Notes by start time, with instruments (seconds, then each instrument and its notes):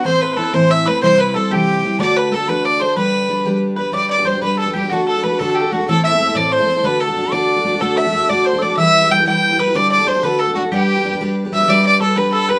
0.04 steel-string acoustic guitar A2 E3 A3 C4 E4 C5, fiddle C5, mandolin C5, tin whistle C6
0.21 fiddle B4, mandolin B4
0.33 steel-string acoustic guitar A3, fiddle A4, mandolin B4
0.37 steel-string acoustic guitar C4 E4 C5, tin whistle A5
0.44 mandolin B4
0.53 steel-string acoustic guitar A2 E3 A3 C4 E4 C5, fiddle C5, mandolin C5, tin whistle C6
0.70 mandolin E5, fiddle E5, tin whistle E6
0.85 steel-string acoustic guitar A3 C4 E4 C5, mandolin B4, fiddle B4, tin whistle B5
1.02 steel-string acoustic guitar C3 E3 G3 C4 E4 C5, mandolin C5, fiddle C5, tin whistle C6
1.18 mandolin B4, fiddle B4, tin whistle B5
1.34 steel-string acoustic guitar G3 C4 E4 C5, mandolin A4, fiddle A4, tin whistle A5
1.50 steel-string acoustic guitar C3 E3 G3 C4 E4 C5, mandolin G4, fiddle G4, tin whistle G5
1.83 steel-string acoustic guitar G3 C4 E4 C5
1.99 steel-string acoustic guitar D3 A3 D4 F#4 A4, mandolin D5, fiddle D5, tin whistle D6
2.16 mandolin B4, fiddle B4, tin whistle B5
2.32 steel-string acoustic guitar A3 D4 F#4 A4, mandolin A4, fiddle A4, tin whistle A5
2.48 steel-string acoustic guitar D3 A3 D4 F#4 A4, fiddle B4, mandolin B4, tin whistle B5
2.65 fiddle D5, mandolin D5
2.80 steel-string acoustic guitar D4 F#4 A4, mandolin C5, fiddle C5, tin whistle C6
2.96 steel-string acoustic guitar G3 D4 G4 B4, mandolin B4, fiddle B4, tin whistle B5
3.29 steel-string acoustic guitar G3 D4 G4 B4
3.45 steel-string acoustic guitar G3 D4 G4 B4
3.76 steel-string acoustic guitar D4 G4 B4, mandolin B4, fiddle B4, tin whistle B5
3.92 steel-string acoustic guitar G3 D4 G4 B4, mandolin D5, fiddle D5, tin whistle D6
4.09 mandolin D5, fiddle D5, tin whistle D6
4.17 steel-string acoustic guitar D4 G4 B4
4.24 steel-string acoustic guitar G3 D4 G4 B4, mandolin C5, fiddle C5, tin whistle C6
4.33 steel-string acoustic guitar D4 G4 B4
4.41 steel-string acoustic guitar G3 D4 G4 B4, mandolin B4, fiddle B4, tin whistle B5
4.57 mandolin A4, fiddle A4, tin whistle A5
4.66 steel-string acoustic guitar D4 G4 B4
4.73 steel-string acoustic guitar G3 D4 G4 B4, mandolin G4, fiddle G4, tin whistle G5
4.82 steel-string acoustic guitar D4 G4 B4
4.89 steel-string acoustic guitar D3 A3 D4 F#4 A4, mandolin F#4, fiddle F#4, tin whistle F#5
5.07 mandolin A4, fiddle A4, tin whistle A5
5.16 steel-string acoustic guitar D4 F#4 A4
5.22 steel-string acoustic guitar A3 D4 F#4, mandolin B4, fiddle B4, tin whistle B5
5.26 steel-string acoustic guitar A4
5.32 steel-string acoustic guitar D4 F#4 A4
5.39 steel-string acoustic guitar D3 A3 D4 F#4 A4, fiddle A4, mandolin A4, tin whistle A5
5.50 mandolin A4
5.55 fiddle G4, tin whistle G5
5.60 mandolin A4, steel-string acoustic guitar A4
5.65 steel-string acoustic guitar D4 F#4
5.71 steel-string acoustic guitar A3 D4 F#4 A4, fiddle F#4, mandolin F#4, tin whistle F#5
5.80 steel-string acoustic guitar D4 F#4 A4
5.87 steel-string acoustic guitar A2 E3 A3 C4 E4 A4, fiddle A4, mandolin A4, tin whistle A5
6.04 mandolin E5, fiddle E5, tin whistle E6
6.11 steel-string acoustic guitar A3 C4 E4 A4
6.19 steel-string acoustic guitar A3 C4 E4 A4
6.27 steel-string acoustic guitar A3 C4 E4 A4
6.35 steel-string acoustic guitar A2 E3 A3 C4 E4 A4, mandolin D5, fiddle D5, tin whistle D6
6.52 fiddle C5, mandolin C5, tin whistle C6
6.59 steel-string acoustic guitar A3 C4 E4 A4
6.67 steel-string acoustic guitar A3 C4 E4 A4
6.76 steel-string acoustic guitar A3 C4 E4 A4
6.83 steel-string acoustic guitar D3 A3 D4 F#4 A4, mandolin B4, fiddle B4, tin whistle B5
7.00 fiddle A4, mandolin A4, tin whistle A5
7.08 steel-string acoustic guitar D4 F#4 A4
7.16 steel-string acoustic guitar A3 D4 F#4 A4
7.23 steel-string acoustic guitar D4 F#4 A4
7.32 steel-string acoustic guitar D3 A3 D4 F#4 A4, fiddle D5, mandolin D5, tin whistle D6
7.56 steel-string acoustic guitar D4 F#4 A4
7.64 steel-string acoustic guitar A3 D4 F#4 A4
7.73 steel-string acoustic guitar D4 F#4 A4
7.80 steel-string acoustic guitar D3 A3 D4 F#4 A4, fiddle A4, mandolin A4, tin whistle A5
7.96 fiddle E5, mandolin E5, tin whistle E6
8.05 steel-string acoustic guitar D4 F#4 A4
8.12 steel-string acoustic guitar A3 D4 F#4 A4
8.21 steel-string acoustic guitar D4 F#4 A4
8.29 steel-string acoustic guitar D3 A3 D4 F#4 A4, mandolin D5, fiddle D5, tin whistle D6
8.45 mandolin C5, fiddle C5, tin whistle C6
8.53 steel-string acoustic guitar D4 F#4 A4
8.59 steel-string acoustic guitar A3 D4, fiddle D5, mandolin D5, tin whistle E6
8.63 steel-string acoustic guitar F#4 A4, tin whistle D6
8.70 steel-string acoustic guitar D4 F#4 A4
8.76 steel-string acoustic guitar E3 G3 E4 G4 B4, fiddle E5, mandolin E5, tin whistle E6
9.01 steel-string acoustic guitar E4 G4 B4
9.09 steel-string acoustic guitar G3 E4 G4 B4, mandolin G5, fiddle G5, tin whistle G6
9.17 steel-string acoustic guitar E4 G4 B4
9.25 steel-string acoustic guitar E3 G3 E4 G4 B4, fiddle G5, mandolin G5, tin whistle G6
9.49 steel-string acoustic guitar E4 G4 B4
9.58 steel-string acoustic guitar G3 E4 G4 B4, mandolin B4, fiddle B4, tin whistle B5
9.66 steel-string acoustic guitar E4 G4 B4
9.74 steel-string acoustic guitar D3 G3 D4 G4 A4, mandolin D5, fiddle D5, tin whistle D6
9.90 mandolin D5, fiddle D5, tin whistle D6
9.98 steel-string acoustic guitar D4 G4 A4
10.06 steel-string acoustic guitar G3 D4 G4 A4, mandolin C5, fiddle C5, tin whistle C6
10.14 steel-string acoustic guitar D4 G4 A4
10.23 steel-string acoustic guitar D3 A3 D4 F#4 A4, mandolin B4, fiddle B4, tin whistle B5
10.39 fiddle A4, mandolin A4
10.47 steel-string acoustic guitar D4 F#4 A4
10.55 steel-string acoustic guitar A3 D4 F#4 A4, fiddle F#4, mandolin F#4, tin whistle F#5
10.63 steel-string acoustic guitar D4 F#4 A4
10.72 steel-string acoustic guitar G3 D4 G4 B4, mandolin G4, fiddle G4, tin whistle G5
10.95 steel-string acoustic guitar D4 G4 B4
11.04 steel-string acoustic guitar G3 D4 G4 B4
11.12 steel-string acoustic guitar D4 G4 B4
11.21 steel-string acoustic guitar G3 D4 G4 B4
11.45 steel-string acoustic guitar D4 G4 B4
11.52 steel-string acoustic guitar G3 D4 G4 B4, mandolin E5, fiddle E5, tin whistle E6
11.60 steel-string acoustic guitar D4 G4 B4
11.68 steel-string acoustic guitar G3 D4 G4 B4, mandolin D5, fiddle D5, tin whistle D6
11.84 mandolin D5, fiddle D5, tin whistle D6
12.00 steel-string acoustic guitar G3 D4 G4 B4, mandolin A4, fiddle A4, tin whistle A5
12.16 steel-string acoustic guitar G3 D4 G4 B4, mandolin B4, fiddle B4, tin whistle B5
12.32 fiddle A4, mandolin A4
12.48 steel-string acoustic guitar D4 G4 B4, mandolin B4, fiddle B4, tin whistle B5